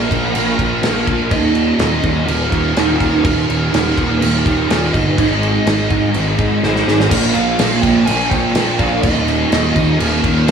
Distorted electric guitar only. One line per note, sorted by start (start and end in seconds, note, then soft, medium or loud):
0.00 0.32 A#2 medium
0.00 0.11 F3 medium
0.10 0.34 F3 medium
0.10 0.35 A#3 medium
0.34 0.81 A#2 medium
0.34 0.82 F3 loud
0.34 0.84 A#3 loud
0.82 1.29 A#2 medium
0.82 1.30 F3 medium
0.82 4.34 A#3 medium
1.30 1.78 D#2 medium
1.30 1.79 A#2 medium
1.30 1.80 D#3 loud
1.79 2.25 D#2 medium
1.79 2.04 A#2 medium
1.79 2.02 D#3 medium
2.03 2.26 A#2 medium
2.03 2.27 D#3 medium
2.26 2.74 D#2 medium
2.26 2.75 A#2 medium
2.26 2.76 D#3 loud
2.75 3.22 D#2 medium
2.75 3.23 A#2 medium
2.75 3.23 D#3 medium
3.23 3.71 D#2 medium
3.23 3.72 A#2 medium
3.23 3.72 D#3 loud
3.72 4.19 D#2 medium
3.72 3.97 A#2 medium
3.72 3.95 D#3 medium
3.97 4.20 A#2 medium
3.97 4.21 D#3 medium
4.20 4.67 D#2 medium
4.20 4.68 A#2 medium
4.20 4.69 D#3 loud
4.69 5.16 D#2 medium
4.69 5.16 A#2 medium
4.69 5.17 D#3 medium
5.17 5.64 G#2 loud
5.17 5.65 D#3 medium
5.17 5.67 G#3 loud
5.65 6.13 G#2 medium
5.65 5.90 D#3 medium
5.65 5.88 G#3 medium
5.89 6.14 D#3 medium
5.89 6.15 G#3 medium
6.14 6.61 G#2 loud
6.14 6.62 D#3 loud
6.14 6.63 G#3 loud
6.62 7.09 G#2 medium
6.62 7.09 D#3 medium
6.62 7.10 G#3 medium
7.10 7.57 A#2 medium
7.10 7.58 F3 loud
7.10 7.60 A#3 loud
7.58 8.04 A#2 medium
7.58 7.83 F3 medium
7.58 7.82 A#3 medium
7.82 8.06 F3 medium
7.82 8.08 A#3 medium
8.05 8.54 A#2 medium
8.05 8.55 F3 loud
8.05 8.57 A#3 loud
8.55 9.02 A#2 medium
8.55 9.02 F3 medium
8.55 10.51 A#3 medium
9.02 9.50 D#2 medium
9.02 9.50 A#2 loud
9.02 9.53 D#3 loud
9.51 9.98 D#2 medium
9.51 9.76 A#2 medium
9.51 9.74 D#3 medium
9.75 9.98 A#2 medium
9.75 9.99 D#3 medium
9.98 10.46 D#2 loud
9.98 10.47 A#2 loud
9.98 10.48 D#3 loud
10.47 10.51 D#2 medium
10.47 10.51 A#2 medium